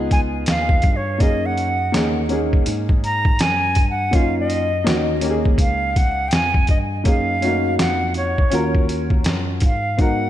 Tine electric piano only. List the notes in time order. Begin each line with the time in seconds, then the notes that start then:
Already playing: C#2
0.47 D#2
0.84 G2
1.20 F#2
1.94 D#2
2.67 G#2
3.40 F#2
3.77 G2
4.13 F#2
4.87 D#2
5.58 C#2
6.33 F2
6.69 G2
7.06 F#2
7.79 F2
8.38 D#2
8.52 D#2
9.26 F#2
9.62 G#2
9.99 G#2